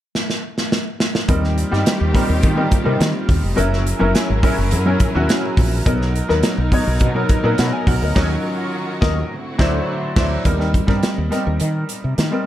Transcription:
0.15 snare
0.30 snare
0.58 snare
0.72 snare
1.00 snare
1.15 snare
1.28 fretless electric bass D#2, string section D#3 A#3 C4 F4 G4, grand piano G3 C4 D#4 A#4, kick, closed hi-hat
1.44 snare
1.58 closed hi-hat
1.71 fretless electric bass G2, grand piano G3 C4 D#4 G4, snare
1.86 snare, closed hi-hat
2.01 fretless electric bass D#2
2.14 grand piano G3 C4 D#4 A#4, kick, snare, open hi-hat
2.29 fretless electric bass D#2
2.43 fretless electric bass D#3, kick, closed hi-hat
2.56 grand piano G3 C4 D#4 A#4
2.71 kick, closed hi-hat
2.84 fretless electric bass C3, grand piano G3 C4 D#4 A#4
3.00 fretless electric bass D#3, snare, closed hi-hat
3.29 fretless electric bass D#2, kick, open hi-hat
3.43 fretless electric bass F1
3.56 fretless electric bass F#1, grand piano F#3 C#4 E4 A#4, string section F#3 C#4 E4 G#4 A#4, closed hi-hat
3.73 snare
3.86 closed hi-hat
3.99 fretless electric bass F#1, grand piano F#3 C#4 E4 A#4
4.15 snare, closed hi-hat
4.30 fretless electric bass G#1
4.43 grand piano F#3 C#4 E4 A#4, kick, open hi-hat
4.58 fretless electric bass F#1
4.71 fretless electric bass F#2, closed hi-hat
4.85 grand piano F#3 C#4 E4 A#4
5.00 kick, closed hi-hat
5.14 fretless electric bass D#2, grand piano F#3 C#4 E4 F#4
5.29 snare, closed hi-hat
5.57 fretless electric bass A#1, kick, open hi-hat
5.86 fretless electric bass B1, grand piano F#3 B3 D#4 A#4, string section B3 D#4 A#4, kick, closed hi-hat
6.02 snare
6.15 closed hi-hat
6.28 fretless electric bass D#2, grand piano F#3 B3 D#4 A#4, snare
6.43 snare, closed hi-hat
6.58 fretless electric bass B1
6.72 grand piano F#3 B3 D#4 C#5, kick, open hi-hat
6.87 fretless electric bass B1
7.00 fretless electric bass B2, kick, closed hi-hat
7.15 grand piano F#3 B3 D#4 A#4
7.29 kick, closed hi-hat
7.44 fretless electric bass A#2, grand piano F#3 B3 D#4 A#4
7.58 fretless electric bass B2, grand piano F#5 B5, snare, closed hi-hat
7.73 grand piano D#5 G#5
7.87 fretless electric bass B1, grand piano C#5 F#5, kick, open hi-hat
8.02 fretless electric bass D2, grand piano A#4 D#5
8.15 fretless electric bass D#2, string section D#3 C#4 F4 F#4, grand piano F#3 C#4 D#4 A#4, kick, snare, crash
9.01 fretless electric bass D#2, grand piano A#4 D#5, kick, snare
9.30 string section D3 A3 C4 E4 F#4
9.58 fretless electric bass D2, grand piano F#3 D4 E4 C5, kick, snare
10.16 fretless electric bass D2, grand piano E3 D4 E4 C5, kick, snare, crash
10.22 grand piano F#3
10.45 fretless electric bass D#2, grand piano G3 C4 D#4 A#4, kick, closed hi-hat
10.58 grand piano G3 C4 D#4 A#4, snare
10.74 kick, closed hi-hat
10.87 fretless electric bass G2, grand piano G3 C4 D#4 A#4, kick, snare
11.03 snare, closed hi-hat
11.18 fretless electric bass D#2
11.31 grand piano G3 C4 D#4 A#4, snare, closed hi-hat
11.47 fretless electric bass D#2
11.60 fretless electric bass D#3, closed hi-hat
11.89 closed hi-hat
12.04 fretless electric bass C3
12.18 fretless electric bass D#3, snare, closed hi-hat
12.31 grand piano G3 C4 D#4 A#4

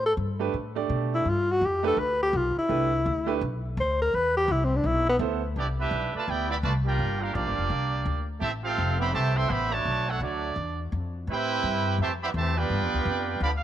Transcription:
Already playing: upright bass A2
0.06 tenor saxophone A4
0.17 upright bass G2
0.39 grand piano A3 D4 G4 B4
0.54 upright bass A2
0.75 grand piano A3 D4 G4 D5
0.89 upright bass B2
1.15 tenor saxophone E4
1.25 upright bass G2
1.29 tenor saxophone F4
1.51 tenor saxophone F#4
1.61 upright bass F2, tenor saxophone G4
1.83 grand piano A3 D4 G4 B4
1.87 tenor saxophone A4
1.97 upright bass D2, tenor saxophone B4
2.23 tenor saxophone G4
2.33 upright bass B1, tenor saxophone F4
2.56 tenor saxophone E4, muted upright bass stroke
2.69 upright bass C2, grand piano A3 D4 G4 B4
3.06 upright bass D2
3.26 grand piano A3 D4 G4 B4
3.41 upright bass B1
3.77 upright bass D2, tenor saxophone C5
4.02 tenor saxophone A#4
4.13 upright bass E2, tenor saxophone B4
4.37 tenor saxophone G4
4.48 upright bass C2, tenor saxophone E4
4.64 tenor saxophone C4
4.76 tenor saxophone D4
4.84 upright bass B1, tenor saxophone E4
5.09 tenor saxophone B3
5.19 upright bass D2, grand piano B3 E4 A4 C5
5.56 upright bass C2, trombone section G3 B3 D4, trumpet section B3 E4 G4 D5
5.78 trombone section G3 B3 E4, trumpet section D4 G4 B4 E5
5.91 upright bass B1
6.13 trombone section A3, trumpet section F4 B4 D5 A5, muted upright bass stroke
6.28 upright bass D2, trombone section B3 E4 G4, trumpet section E4 B4 D5 G5
6.48 trombone section E3 G3 B3, trumpet section G4 D5 E5 B5
6.63 upright bass C2, trombone section A3, trumpet section F4 B4 D5 A5
6.83 trombone section A#3 D4 G4, trumpet section F4 A#4 D5
6.87 trumpet section G5
6.99 upright bass G1
7.18 trombone section A#3 D4 F4, trumpet section G4 A#4 F5
7.22 trumpet section D4
7.32 upright bass A#1, trombone section F3 A#3 D4, trumpet section A#3 F4 G4 D5
7.47 upright bass G1
7.58 upright bass F1
7.70 upright bass C2
8.05 upright bass D2
8.39 upright bass A1, trombone section A3 C4 E4, trumpet section C4 G4 A4 E5
8.63 trombone section A3 C4 F4, trumpet section C4 G4 A4 F5
8.78 upright bass F1
8.97 trombone section B3, trumpet section G4 C5 E5 B5
9.10 trombone section C3 E3 A3
9.14 upright bass C2, trumpet section G4 C5 E5 A5
9.34 trombone section E3 A3 C4, trumpet section A4 E5 G5 C6
9.49 upright bass A1, trombone section B3, trumpet section G4 C5 E5 B5
9.71 trombone section D3 F#3 A3, trumpet section F#4 C#5 D5 A5
9.85 upright bass B1
10.06 trombone section A3 D4 F#4, trumpet section D4 A4 C#5 F#5
10.20 upright bass D2, trombone section F#3 A3 D4, trumpet section A3 F#4 C#5 D5
10.56 upright bass E2
10.92 upright bass F2
11.27 upright bass A2, trombone section C4 E4 G4, trumpet section E4 B4 C5 G5
11.63 upright bass G2
11.98 upright bass F2, trombone section C3 E3 A3
12.02 trumpet section G4 C5 E5 A5
12.23 trombone section E3 G3 B3, trumpet section G4 C5 E5 B5
12.34 upright bass E2, trombone section C3 E3 A3, trumpet section G4 C5 E5 A5
12.58 trombone section B3 D4 G4, trumpet section F4 B4 D5 G5
12.70 upright bass G2
12.82 upright bass F2
12.94 upright bass D2
13.05 upright bass F2
13.40 upright bass D2, trombone section D3 F3 B3, trumpet section G4 D5 F5 B5
13.57 trumpet section F5

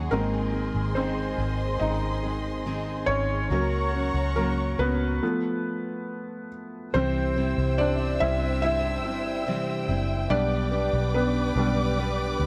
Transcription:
Already playing: steel-string acoustic guitar F#3 A#3 C#4 F#4 G#4, felt piano F#4 F#5, string section G#4
0.11 fingered electric bass G#1, steel-string acoustic guitar G#2 D#3 G#3 C4 D#4 G#4, felt piano D#3 G#3 A#3 C4 A#4, string section D#5 C6
0.53 steel-string acoustic guitar G#3 C4 D#4 G#4
0.74 fingered electric bass G#1
0.95 steel-string acoustic guitar G#2 D#3 G#3 C4 D#4 G#4, felt piano C4 C5
1.38 fingered electric bass G#1, steel-string acoustic guitar G#3 C4 D#4 G#4
1.79 fingered electric bass G#1, steel-string acoustic guitar G#3 C4 D#4 G#4, felt piano D#4 D#5
2.23 steel-string acoustic guitar G#3 C4 D#4 G#4
2.65 steel-string acoustic guitar G#2 D#3 G#3 C4 D#4 G#4
3.06 fingered electric bass G#1, felt piano C#4 C#5
3.50 fingered electric bass C#2, steel-string acoustic guitar C#3 F#3 C#4 F#4 A#4, felt piano F#3 A#3 C#4, string section C#5 F#5 A#5 C#6
3.93 steel-string acoustic guitar C#4 F#4 A#4
4.14 fingered electric bass C#2
4.35 steel-string acoustic guitar C#3 F#3 C#4 F#4 A#4, felt piano A#3 A#4
4.78 fingered electric bass C#2, felt piano B3 B4, steel-string acoustic guitar C#4 F#4 A#4
5.22 felt piano F3 A3 B3
6.94 fingered electric bass C2, steel-string acoustic guitar C3 E3 G3 C4 E4 C5, felt piano C4 C5, string section C5 E5 G5 E6
7.36 steel-string acoustic guitar C3 E3 G3 C4 E4 C5
7.58 fingered electric bass C2
7.78 felt piano D4 D5
8.20 fingered electric bass C2, felt piano G3 C4 E4 E5, steel-string acoustic guitar G3 C4 E4 C5
8.62 steel-string acoustic guitar G3 C4 E4 C5, felt piano E4 E5
9.05 fingered electric bass G1, steel-string acoustic guitar G3 C4 E4 C5
9.47 steel-string acoustic guitar C3 E3 G3 C4 E4 C5
9.88 fingered electric bass F#1, steel-string acoustic guitar G3 C4 E4 C5
10.30 fingered electric bass B1, felt piano G3 B3 D4 D5, steel-string acoustic guitar B3 D4 G4 B4, string section B4 D5 D6
10.71 steel-string acoustic guitar B3 D4 G4 B4
10.93 fingered electric bass B1
11.14 felt piano B3 B4
11.55 fingered electric bass B1, felt piano G3 B3 D4, steel-string acoustic guitar D4 G4 B4
11.98 steel-string acoustic guitar B3 D4 G4 B4
12.38 fingered electric bass D2, steel-string acoustic guitar D4 G4 B4

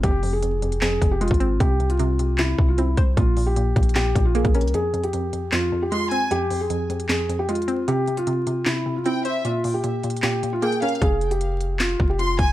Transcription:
Already playing: synth pluck G#3 C4
0.03 808-style bass F1, synth pluck F2, felt piano G4, kick, closed hi-hat
0.23 synth pluck F2, open hi-hat
0.33 felt piano G#4
0.42 synth pluck F2, closed hi-hat
0.62 synth pluck F2, closed hi-hat
0.72 closed hi-hat
0.81 synth pluck F2, felt piano G#4, snare, clap, closed hi-hat
1.01 808-style bass F1, synth pluck F2, kick, closed hi-hat
1.11 felt piano G4
1.21 synth pluck G#3, felt piano F4, closed hi-hat
1.28 808-style bass G#1, kick, closed hi-hat
1.34 closed hi-hat
1.40 synth pluck C4, closed hi-hat
1.60 808-style bass C2, synth pluck C3, felt piano G4, kick, closed hi-hat
1.80 synth pluck C3, closed hi-hat
1.90 felt piano F4, closed hi-hat
1.99 synth pluck C3, closed hi-hat
2.19 synth pluck C3, closed hi-hat
2.38 synth pluck C3, felt piano E4, snare, clap, closed hi-hat
2.58 808-style bass C2, synth pluck C3, kick
2.68 felt piano F4
2.78 synth pluck C4, felt piano E4, closed hi-hat
2.97 808-style bass C2, synth pluck C5, kick, closed hi-hat
3.17 808-style bass A#1, synth pluck A#2, felt piano F4, kick, closed hi-hat
3.37 synth pluck A#2, open hi-hat
3.46 felt piano G4
3.56 synth pluck A#2, closed hi-hat
3.76 808-style bass A#1, synth pluck A#2, kick, closed hi-hat
3.83 closed hi-hat
3.89 closed hi-hat
3.95 synth pluck A#2, felt piano G4, snare, clap, closed hi-hat
4.15 808-style bass A#1, synth pluck A#2, kick, closed hi-hat
4.25 felt piano F4
4.35 synth pluck A#3, felt piano G#4, closed hi-hat
4.45 808-style bass A#1, kick, closed hi-hat
4.54 synth pluck C#4, felt piano A#4, closed hi-hat
4.61 808-style bass C2, closed hi-hat
4.68 closed hi-hat
4.74 synth pluck F2, felt piano G#4, closed hi-hat
4.94 synth pluck F2, closed hi-hat
5.04 felt piano G4, closed hi-hat
5.13 synth pluck F2, closed hi-hat
5.33 synth pluck F2, closed hi-hat
5.52 synth pluck F2, felt piano F4, snare, clap, closed hi-hat
5.72 synth pluck F2
5.82 felt piano G4
5.92 synth pluck G#3, felt piano F4, violin section C6, closed hi-hat
6.11 synth pluck C4, violin section G#5, closed hi-hat
6.31 synth pluck F2, felt piano G4, closed hi-hat
6.51 synth pluck F2, open hi-hat
6.61 felt piano G#4
6.70 synth pluck F2, closed hi-hat
6.90 synth pluck F2, closed hi-hat
7.00 closed hi-hat
7.09 synth pluck F2, felt piano G#4, snare, clap, closed hi-hat
7.29 synth pluck F2, closed hi-hat
7.39 felt piano G4
7.49 synth pluck G#3, felt piano F4, closed hi-hat
7.55 closed hi-hat
7.62 closed hi-hat
7.68 synth pluck C4, closed hi-hat
7.88 synth pluck C3, felt piano G4, closed hi-hat
8.07 synth pluck C3, closed hi-hat
8.17 felt piano F4, closed hi-hat
8.27 synth pluck C3, closed hi-hat
8.47 synth pluck C3, closed hi-hat
8.66 synth pluck C3, felt piano E4, snare, clap, closed hi-hat
8.86 synth pluck C3
8.96 felt piano F4
9.06 synth pluck C4, felt piano E4, violin section G5, closed hi-hat
9.25 synth pluck C5, violin section E5, closed hi-hat
9.45 synth pluck A#2, felt piano F4, closed hi-hat
9.64 synth pluck A#2, open hi-hat
9.74 felt piano G4
9.84 synth pluck A#2, closed hi-hat
10.04 synth pluck A#2, closed hi-hat
10.10 closed hi-hat
10.17 closed hi-hat
10.22 synth pluck A#2, felt piano G4, snare, clap, closed hi-hat
10.43 synth pluck A#2, closed hi-hat
10.53 felt piano F4
10.62 synth pluck A#3, felt piano G#4, violin section G5, closed hi-hat
10.72 closed hi-hat
10.82 synth pluck C#4, felt piano A#4, violin section F5, closed hi-hat
10.88 closed hi-hat
10.95 closed hi-hat
11.02 808-style bass F1, felt piano G#4, kick, closed hi-hat
11.21 closed hi-hat
11.31 felt piano G4, closed hi-hat
11.41 closed hi-hat
11.61 closed hi-hat
11.79 felt piano F4, snare, clap, closed hi-hat
12.00 808-style bass F1, kick
12.10 felt piano G4
12.19 felt piano F4, violin section C6, closed hi-hat
12.39 808-style bass F1, violin section G#5, kick, closed hi-hat

